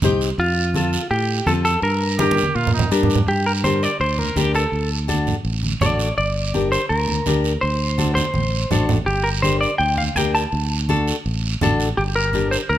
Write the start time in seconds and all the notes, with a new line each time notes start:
0.02 C2 D#4 G4 C5, high conga, low conga, short guiro
0.21 short guiro
0.38 F2 F4, high conga, long guiro
0.74 C4 F4 A4, high conga, short guiro
0.93 short guiro
1.10 A2 G4, high conga, long guiro
1.46 F2 C4 F4 A4, high conga, short guiro
1.65 A4, short guiro
1.82 G2 A#4, high conga, long guiro
2.19 D4 G4 A#4, high conga, short guiro
2.31 high conga
2.37 short guiro
2.43 high conga
2.55 A#2 F4, long guiro
2.67 low conga
2.74 D#4
2.79 low conga
2.91 G2 D4 G4 A#4, short guiro
3.03 low conga
3.10 short guiro
3.15 low conga
3.27 G2 G4, long guiro
3.46 A#4
3.64 D4 G4 A#4 C5, high conga, short guiro
3.83 D5, short guiro
4.00 D2 C5, long guiro
4.18 A#4, high conga
4.36 D2 D4 G4 A#4, high conga, short guiro
4.54 A4, short guiro
4.72 D2, long guiro
5.08 D4 F#4 A4, high conga, short guiro
5.27 low conga, short guiro
5.45 A1, long guiro
5.63 high conga
5.81 A1 D4 F#4 A4 D5, high conga, low conga, short guiro
5.99 short guiro
6.18 G1 D5, long guiro
6.54 D4 G4 A#4, high conga, short guiro
6.72 C5, short guiro
6.89 D2 A#4, long guiro
7.08 high conga
7.26 D2 D4 G4 A#4, high conga, short guiro
7.44 short guiro
7.61 D2 C5, long guiro
7.98 D4 F#4 A4, high conga, short guiro
8.15 C5, high conga, short guiro
8.34 A1, high conga, long guiro
8.71 A1 D4 F#4 A4, low conga, short guiro
8.89 low conga, short guiro
9.06 G1 G4, long guiro
9.24 A#4
9.42 D4 G4 A#4 C5, high conga, short guiro
9.61 D5, short guiro
9.78 D2 G5, long guiro
9.97 F5, high conga
10.15 D2 D4 G4 A#4 G5, high conga, short guiro
10.35 A5, short guiro
10.52 D2, long guiro
10.89 D4 F#4 A4, high conga, short guiro
11.07 short guiro
11.26 A1, long guiro
11.61 A1 D4 F#4 A4, high conga, low conga, short guiro
11.80 short guiro
11.97 G1 G4, long guiro
12.16 A#4
12.33 D4 G4 A#4, high conga, short guiro
12.51 C5, short guiro
12.69 D2 A#4, long guiro